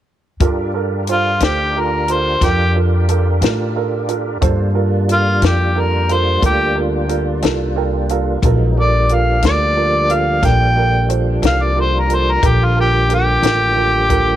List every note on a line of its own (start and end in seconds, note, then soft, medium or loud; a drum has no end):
0.40 1.38 G2 medium
0.40 4.38 D4 medium
0.40 0.66 F4 medium
0.40 4.38 F4 medium
0.40 4.38 G4 medium
0.40 0.66 A4 medium
0.40 4.38 A#4 medium
0.40 0.66 A#4 medium
0.40 kick medium
0.40 closed hi-hat medium
0.74 0.99 F4 medium
0.74 1.00 A4 soft
0.74 1.00 A#4 medium
1.07 1.33 F4 soft
1.07 1.34 A4 soft
1.07 1.34 C5 medium
1.07 closed hi-hat medium
1.12 1.45 F4 medium
1.40 2.38 D2 medium
1.40 1.67 F4 soft
1.40 1.81 G4 medium
1.40 1.67 A4 soft
1.40 1.67 C5 medium
1.40 snare loud
1.40 closed hi-hat medium
1.76 2.00 F4 soft
1.76 2.00 A4 soft
1.76 2.01 A#4 soft
1.80 2.14 A#4 medium
2.08 2.34 F4 soft
2.08 2.34 A4 soft
2.08 2.34 A#4 medium
2.08 closed hi-hat medium
2.12 2.46 C5 medium
2.41 3.39 F2 medium
2.41 2.67 F4 soft
2.41 2.76 G4 medium
2.41 2.67 A4 soft
2.41 2.67 A#4 medium
2.41 kick medium
2.41 snare soft
2.41 closed hi-hat medium
2.75 3.00 F4 soft
2.75 3.00 A4 soft
2.75 3.01 A#4 soft
3.09 3.33 F4 medium
3.09 3.34 A4 medium
3.09 3.34 A#4 medium
3.09 closed hi-hat medium
3.41 4.39 A2 medium
3.41 3.67 F4 medium
3.41 3.67 A4 soft
3.41 3.67 A#4 medium
3.41 snare medium
3.41 closed hi-hat medium
3.76 4.01 F4 medium
3.76 4.01 A4 soft
3.76 4.01 A#4 medium
4.08 4.33 F4 medium
4.08 4.34 A4 medium
4.08 4.34 A#4 medium
4.08 closed hi-hat soft
4.41 5.39 G2 medium
4.41 8.39 G3 medium
4.41 8.39 A#3 medium
4.41 8.39 D4 medium
4.41 4.67 F4 medium
4.41 8.39 F4 medium
4.41 4.67 A4 medium
4.41 4.67 C5 medium
4.41 kick medium
4.41 closed hi-hat medium
4.74 5.00 F4 medium
4.74 5.00 A4 soft
4.74 5.00 A#4 medium
5.08 5.33 F4 soft
5.08 5.34 A4 soft
5.08 5.34 A#4 soft
5.08 closed hi-hat medium
5.13 5.43 F4 medium
5.42 6.39 F2 medium
5.42 5.67 F4 soft
5.42 5.67 A4 soft
5.42 5.67 A#4 medium
5.42 snare medium
5.42 closed hi-hat medium
5.46 5.81 G4 medium
5.76 6.01 F4 soft
5.76 6.01 A4 soft
5.76 6.01 A#4 soft
5.76 6.14 A#4 medium
6.09 6.34 F4 soft
6.09 6.34 A4 soft
6.09 6.34 A#4 medium
6.09 6.43 C5 medium
6.09 closed hi-hat medium
6.42 7.40 D2 medium
6.42 6.67 F4 medium
6.42 6.76 G4 medium
6.42 6.68 A4 soft
6.42 6.68 A#4 medium
6.42 kick medium
6.42 closed hi-hat medium
6.75 7.01 F4 soft
6.75 7.01 A4 soft
6.75 7.01 A#4 soft
7.08 7.34 F4 medium
7.08 7.34 A4 soft
7.08 7.34 A#4 medium
7.08 closed hi-hat medium
7.42 8.40 C2 medium
7.42 7.67 F4 medium
7.42 7.68 A4 medium
7.42 7.68 A#4 medium
7.42 snare loud
7.42 closed hi-hat medium
7.76 8.01 F4 medium
7.76 8.01 A4 medium
7.76 8.01 A#4 medium
7.76 8.07 G5 medium
8.09 8.35 F4 medium
8.09 8.35 A4 medium
8.09 8.35 A#4 medium
8.09 8.41 F5 soft
8.09 closed hi-hat medium
8.42 9.40 A#1 medium
8.42 8.77 F#3 medium
8.42 8.77 G#3 medium
8.42 8.77 B3 medium
8.42 8.77 D#4 medium
8.42 8.69 F4 medium
8.42 8.69 A4 medium
8.42 8.69 A#4 medium
8.42 kick medium
8.42 closed hi-hat medium
8.77 12.41 F3 medium
8.77 12.40 G3 medium
8.77 12.41 A#3 medium
8.77 12.40 D4 medium
8.77 9.02 F4 soft
8.77 9.02 A4 soft
8.77 9.02 A#4 soft
8.77 9.15 D5 medium
9.09 9.35 F4 medium
9.09 9.35 A4 soft
9.09 9.35 A#4 medium
9.09 closed hi-hat medium
9.14 9.44 F5 medium
9.42 10.40 D2 medium
9.42 9.68 F4 medium
9.42 9.68 A4 soft
9.42 9.68 A#4 medium
9.42 10.14 D5 medium
9.42 snare medium
9.42 closed hi-hat medium
9.76 10.01 F4 soft
9.76 10.02 A4 soft
9.76 10.02 A#4 medium
10.09 10.34 F4 medium
10.09 10.35 A4 soft
10.09 10.35 A#4 medium
10.09 closed hi-hat soft
10.13 10.47 F5 medium
10.42 11.40 A#1 medium
10.42 10.68 F4 medium
10.42 10.68 A4 medium
10.42 10.68 A#4 medium
10.42 11.09 G5 medium
10.42 kick medium
10.42 snare soft
10.42 closed hi-hat medium
10.76 11.01 F4 soft
10.76 11.02 A4 soft
10.76 11.02 A#4 medium
11.09 11.34 F4 soft
11.09 11.35 A4 soft
11.09 11.35 C5 medium
11.09 closed hi-hat medium
11.42 12.40 C2 medium
11.42 11.68 F4 soft
11.42 11.68 A4 soft
11.42 11.68 A#4 medium
11.42 snare loud
11.42 closed hi-hat medium
11.46 11.65 F5 medium
11.63 11.77 D5 medium
11.76 12.02 F4 medium
11.76 12.02 A4 soft
11.76 12.02 A#4 medium
11.81 12.01 C5 medium
11.99 12.16 A#4 medium
12.09 12.35 F4 medium
12.09 12.35 A4 soft
12.09 12.35 A#4 medium
12.09 closed hi-hat medium
12.15 12.33 C5 medium
12.32 12.48 A#4 medium
12.42 13.41 A#1 medium
12.42 14.36 D3 medium
12.42 14.36 F3 medium
12.42 14.36 G3 medium
12.42 14.36 A#3 medium
12.42 12.68 F4 medium
12.42 12.68 A4 medium
12.42 12.69 A#4 medium
12.42 kick loud
12.42 closed hi-hat medium
12.47 12.66 G4 medium
12.64 12.78 F4 medium
12.76 13.02 F4 soft
12.76 13.02 A4 soft
12.76 13.02 A#4 medium
12.80 13.11 G4 medium
13.08 13.35 F4 soft
13.08 13.35 A4 soft
13.08 13.35 A#4 medium
13.08 closed hi-hat medium
13.14 14.36 G4 medium
13.42 14.36 A1 medium
13.42 13.68 F4 soft
13.42 13.68 A4 soft
13.42 13.69 A#4 medium
13.42 snare medium
13.42 closed hi-hat medium
13.75 14.01 F4 soft
13.75 14.02 A4 soft
13.75 14.02 A#4 medium
14.08 14.35 F4 medium
14.08 14.35 A4 soft
14.08 14.35 A#4 medium
14.08 kick medium
14.08 closed hi-hat medium